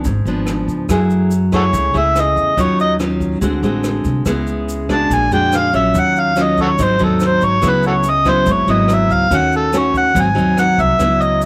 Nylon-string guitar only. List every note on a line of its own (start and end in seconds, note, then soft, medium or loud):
0.06 0.87 G#2 medium
0.27 0.86 F3 medium
0.27 0.87 B3 medium
0.27 0.87 D4 medium
0.90 1.72 F#3 medium
0.90 1.31 A3 medium
0.90 1.32 E4 soft
0.90 1.32 G#4 medium
1.52 1.91 A3 medium
1.52 1.91 E4 medium
1.52 1.91 G#4 medium
1.73 2.55 C#3 medium
1.94 2.54 A3 medium
1.94 2.54 E4 medium
1.94 2.54 G#4 medium
2.57 3.40 D#3 medium
2.57 2.96 F#3 medium
2.57 2.97 C#4 soft
2.57 2.97 F4 medium
3.00 3.40 F#3 medium
3.00 3.40 C#4 medium
3.00 3.40 F4 medium
3.41 4.24 D3 medium
3.41 3.59 G#3 medium
3.41 3.60 C4 medium
3.41 3.60 F#4 medium
3.63 4.23 G#3 medium
3.63 4.23 C4 medium
3.63 4.23 F#4 medium
4.26 5.08 C#3 medium
4.26 4.86 G#3 medium
4.26 4.86 B3 medium
4.26 4.86 E4 medium
4.89 5.28 G#3 medium
4.89 5.28 D4 medium
4.89 5.28 F#4 medium
5.11 5.93 A#2 medium
5.32 5.70 G#3 medium
5.32 5.70 D4 medium
5.32 5.71 F#4 medium
5.73 6.33 F#3 medium
5.73 6.33 C#4 medium
5.73 6.33 F4 medium
5.95 6.77 D#3 medium
6.36 6.76 F#3 medium
6.36 6.77 C#4 medium
6.36 6.77 F4 medium
6.79 7.61 G#2 medium
6.79 6.96 F#3 medium
6.79 6.97 C4 medium
6.79 6.97 D#4 medium
6.99 7.59 F#3 medium
6.99 7.59 C4 medium
6.99 7.60 D#4 medium
7.61 8.44 C#3 medium
7.61 8.04 F#3 medium
7.61 8.04 B3 medium
7.61 8.04 E4 medium
8.25 8.64 F#3 medium
8.25 8.64 B3 medium
8.25 8.64 E4 medium
8.46 9.28 G#2 medium
8.68 9.27 F#3 medium
8.68 9.28 B3 medium
8.68 9.28 E4 medium
9.31 10.13 D#3 medium
9.31 9.70 A3 medium
9.31 9.70 C#4 medium
9.31 9.70 F#4 medium
9.74 10.14 A3 medium
9.74 10.14 C#4 medium
9.74 10.14 F#4 medium
10.15 10.97 G#2 medium
10.15 10.27 F#3 medium
10.15 10.27 C4 medium
10.15 10.28 D#4 medium
10.35 10.95 F#3 medium
10.35 10.95 C4 medium
10.35 10.95 D#4 medium
10.99 11.45 C#3 soft
10.99 11.45 F#3 soft
10.99 11.45 B3 medium
10.99 11.45 E4 medium